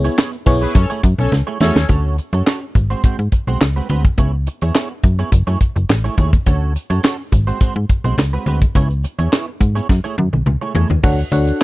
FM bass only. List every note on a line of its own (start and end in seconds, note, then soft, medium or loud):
0.47 0.67 B1 medium
0.75 0.86 F#2 loud
1.03 1.14 F#2 loud
1.19 1.28 B1 medium
1.32 1.43 C#2 loud
1.61 1.71 E2 medium
1.76 1.85 D#2 medium
1.89 2.20 D2 medium
2.33 2.42 F#2 medium
2.75 2.95 G#1 medium
3.04 3.10 G#2 soft
3.19 3.28 G#2 medium
3.47 3.57 B1 medium
3.61 3.81 C#2 medium
3.90 4.10 D2 medium
4.18 4.48 C#2 loud
4.62 4.71 E2 medium
5.04 5.24 F#2 medium
5.32 5.43 F#1 loud
5.47 5.57 F#2 medium
5.76 5.86 F#1 medium
5.90 6.10 A1 loud
6.18 6.38 D#2 loud
6.46 6.77 D2 loud
6.90 7.00 F#2 medium
7.32 7.52 G#1 loud
7.61 7.67 G#2 soft
7.76 7.85 G#2 medium
8.04 8.14 B1 medium
8.18 8.38 C#2 medium
8.46 8.66 D2 medium
8.75 9.06 C#2 loud
9.19 9.28 E2 medium
9.61 9.81 G#2 medium
9.89 10.00 F#2 loud
10.18 10.29 F#2 loud
10.33 10.43 B1 medium
10.46 10.57 C#2 medium
10.75 10.86 E2 medium
10.90 10.99 D#2 medium
11.04 11.24 D2 loud
11.32 11.52 D2 loud